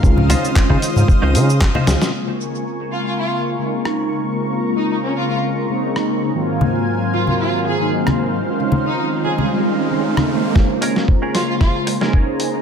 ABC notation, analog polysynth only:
X:1
M:4/4
L:1/16
Q:"Swing 16ths" 1/4=114
K:Bbm
V:1 name="Analog polysynth"
[E,A,CDF]8- [E,A,CDF]3 z3 [E,A,CDF]2 | [D,A,B,]8- [D,A,B,]3 [D,A,B,CE]4- [D,A,B,CE] | [D,A,B,CF]8- [D,A,B,CF]3 [D,A,B,CE]4- [D,A,B,CE] | [A,,E,G,B,CF]8- [A,,E,G,B,CF]3 [A,,E,G,B,CE]4- [A,,E,G,B,CE] |
[E,A,CDF]8- [E,A,CDF]3 [E,A,CDE]4- [E,A,CDE] | [D,A,B,Fc]8- [D,A,B,Fc]3 [D,A,B,Ec]4- [D,A,B,Ec] |]